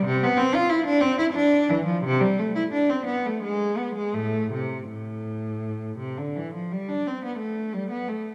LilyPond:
\new Staff \with { instrumentName = "Cello" } { \time 3/4 \key a \minor \tempo 4 = 86 c16 b16 c'16 f'16 e'16 d'16 c'16 e'16 d'8 e16 f16 | c16 g16 a16 e'16 d'16 c'16 b16 a16 gis8 b16 gis16 | <a, a>8 c8 a,4. c16 d16 | e16 f16 g16 d'16 c'16 b16 a8 g16 b16 a8 | }